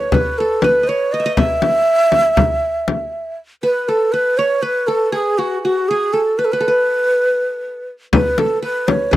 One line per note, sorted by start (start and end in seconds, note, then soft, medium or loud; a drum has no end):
0.00 0.40 A4 medium
0.00 0.14 B4 medium
0.00 0.15 C#5 medium
0.00 0.88 C#5 medium
0.12 0.40 B4 medium
0.12 0.64 B4 medium
0.12 frame drum medium
0.38 0.64 A4 medium
0.38 1.57 A4 medium
0.62 0.89 B4 medium
0.62 1.73 B4 medium
0.62 frame drum medium
0.83 1.13 D#5 medium
0.88 1.14 C#5 medium
0.88 1.91 C#5 medium
1.12 1.36 D#5 medium
1.12 1.25 D#5 medium
1.20 1.32 E5 medium
1.26 1.44 D#5 medium
1.37 3.34 E5 loud
1.37 3.34 E5 medium
1.37 frame drum medium
1.62 frame drum medium
2.12 frame drum medium
2.37 frame drum medium
2.88 frame drum medium
3.63 4.13 B4 medium
3.63 3.90 B4 loud
3.88 4.14 A4 medium
3.88 4.88 A4 medium
4.12 4.39 B4 loud
4.12 4.62 B4 medium
4.38 4.64 C#5 medium
4.38 5.40 C#5 medium
4.62 4.89 B4 loud
4.62 5.72 B4 medium
4.87 5.13 A4 medium
4.87 5.18 A4 medium
5.12 5.90 G#4 medium
5.12 5.40 G#4 medium
5.38 5.62 F#4 medium
5.38 5.64 F#4 medium
5.63 5.90 F#4 medium
5.63 6.95 F#4 medium
5.89 6.15 G#4 medium
5.89 6.19 G#4 medium
6.13 6.40 A4 medium
6.13 6.60 A4 medium
6.38 6.46 B4 medium
6.38 6.53 B4 medium
6.45 6.54 A4 medium
6.52 7.88 B4 medium
6.52 6.67 B4 medium
6.60 7.78 A4 medium
6.68 7.85 B4 medium
8.13 8.62 B4 medium
8.13 8.40 B4 medium
8.13 frame drum medium
8.38 8.62 A4 medium
8.38 9.17 A4 medium
8.38 frame drum medium
8.62 9.11 B4 medium
8.62 8.89 B4 medium
8.88 9.15 C#5 medium
8.88 frame drum medium
9.11 9.17 B4 medium
9.11 frame drum medium